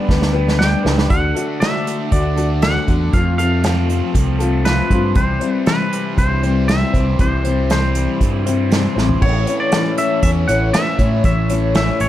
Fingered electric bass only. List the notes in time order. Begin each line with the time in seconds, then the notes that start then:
0.09 D2
0.85 C#2
1.10 D2
2.12 D2
2.88 E2
3.14 F2
4.15 C2
4.91 G2
5.16 C2
6.18 C2
6.94 C2
7.19 C2
8.21 G2
8.96 A1
9.22 A1
10.23 E2
10.49 A1
10.99 A2
11.24 A1
12.00 A1